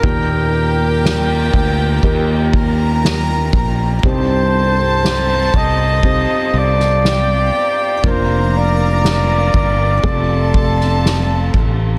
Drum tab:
RD |--x-x-x-x-xxx-x-|x-x-x-x---x-x-x-|x-x-xxx-x-xxx-x-|
SD |----o-------o---|----o------oo---|----o------oo---|
BD |o-----o-o-o---o-|o-----o-o-------|o-----o-o-o---o-|